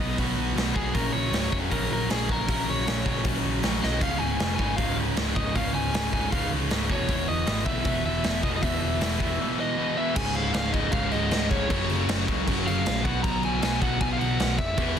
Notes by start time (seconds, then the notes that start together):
Already playing: D#5
0.00 B1 B2 F#3 B3
0.18 B1 B2 F#3 B3, kick, open hi-hat
0.36 B1
0.56 B1 B2 F#3 B3, snare, open hi-hat
0.75 B1 B2 F#3 B3 G#4, kick
0.94 A#1 F#2 C#3 F#3 A#4, kick, open hi-hat
1.12 A#1 C#5
1.32 C#1 F#2 C#3 F#3, snare, open hi-hat
1.52 F1 F#2 C#3 F#3 C#5, kick
1.71 A#1 F#2 C#3 F#3 A#4, kick, open hi-hat
1.91 A#1 A#4
2.10 A#1 F#2 C#3 F#3 G#4, snare, open hi-hat
2.29 A#1 F#2 C#3 F#3 A#4, kick
2.48 A#1 F#2 C#3 F#3, kick, open hi-hat
2.69 A#1 C#5
2.86 A#1 F#2 C#3 F#3, snare, open hi-hat
3.06 A#1 F#2 C#3 F#3, kick
3.24 A#1 F#2 C#3 F#3, kick, open hi-hat
3.45 A#1
3.63 A#1 F#2 C#3 F#3, snare, open hi-hat
3.81 B1 F#2 C#3 F#3 D#5, snare
4.00 C#1 C#2 G#2 C#3 F5, kick, open hi-hat, splash
4.18 C#1 G#5
4.40 F1 C#2 G#2 C#3, snare, open hi-hat
4.56 G#1 C#2 G#2 G#5, kick
4.60 C#3
4.76 C#1 C#2 G#2 C#3 F5, kick, open hi-hat
4.97 C#1
5.17 C#1 C#2 G#2 C#3, snare, open hi-hat
5.36 C#1 C#2 G#2 C#3 D#5, kick
5.55 C#1 C#2 G#2 C#3 F5, kick, open hi-hat
5.75 C#1 G#5
5.94 C#1 C#2 G#2 C#3, snare, open hi-hat
6.13 C#1 C#2 G#2 C#3 G#5, kick
6.32 C#1 C#2 G#2 C#3 F5, kick, open hi-hat
6.52 C#2
6.70 C#1 C#2 G#2 C#3, snare, open hi-hat
6.90 E1 E2 B2 E3 C#5, kick
7.08 E1 E2 B2 E3, kick, open hi-hat
7.28 E1 D#5
7.47 G#1 E2 B2 E3, snare, open hi-hat
7.66 B1 E2 B2 E3 E5, kick
7.84 E1 E2 B2 E3, kick, open hi-hat
8.05 E1 E5
8.23 E1 E2 B2 E3, snare, open hi-hat
8.43 E1 E2 B2 E3 D#5, kick
8.56 D#5
8.61 E1 E2 B2 E3 E5, kick, open hi-hat
8.82 E1
8.99 E1 E2 B2 E3, snare, open hi-hat
9.19 E1 E2 B2 E3, kick
9.39 E2 B2 E3
9.60 D#5
9.78 E2 B2 E3
9.97 E2 B2 E3 E5
10.16 C#1 C#2 G#2 C#3 G#5, kick, crash
10.35 F5, crash
10.54 C#1 F5, snare, crash
10.73 G#2 C#3 D#5, kick, crash
10.78 C#2
10.91 C#1 C#2 G#2 C#3 F5, kick, crash
11.11 C#1 D#5, crash
11.31 C#1, snare, crash
11.51 C#1 C#5, kick, crash
11.70 F#1 F#2 C#3 F#3, kick, crash
11.88 F#1, crash
12.08 F#1, snare, crash
12.28 C#2 F#2 C#3 F#3, kick, crash
12.46 F#1 F#2 C#3 F#3, kick, crash
12.65 F#1 F5, crash
12.86 A#1, snare, crash
13.04 B1 B2 F#3 B3 F#5, kick, crash
13.23 B1 A#5, kick, crash
13.43 G#5, crash
13.62 B1 B2 F#3 B3 G#5, snare, crash
13.80 B2 F#3 B3 F#5, kick, crash
14.01 B1 G#5, kick, crash
14.12 F5
14.19 B1 F#5, crash
14.40 B1, snare, crash
14.58 F1 E5, kick, crash
14.78 E1 E2 B2 E3, kick, crash